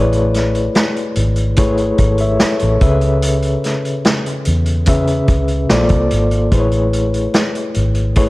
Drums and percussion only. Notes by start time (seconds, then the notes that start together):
0.12 closed hi-hat
0.34 snare, closed hi-hat
0.55 closed hi-hat
0.75 snare, closed hi-hat
0.96 closed hi-hat
1.16 closed hi-hat
1.36 closed hi-hat
1.56 kick, closed hi-hat
1.77 closed hi-hat
1.98 kick, closed hi-hat
2.18 closed hi-hat
2.40 snare, closed hi-hat
2.59 closed hi-hat
2.81 kick, closed hi-hat
3.01 closed hi-hat
3.22 closed hi-hat
3.42 closed hi-hat
3.64 snare, closed hi-hat
3.85 closed hi-hat
4.05 snare, closed hi-hat
4.26 closed hi-hat
4.45 closed hi-hat
4.66 closed hi-hat
4.86 kick, closed hi-hat
5.07 closed hi-hat
5.28 kick, closed hi-hat
5.48 closed hi-hat
5.70 snare, closed hi-hat
5.89 kick, closed hi-hat
6.11 closed hi-hat
6.31 closed hi-hat
6.51 kick, closed hi-hat
6.71 closed hi-hat
6.93 closed hi-hat
7.14 closed hi-hat
7.34 snare, closed hi-hat
7.55 closed hi-hat
7.74 closed hi-hat
7.95 closed hi-hat
8.16 kick, closed hi-hat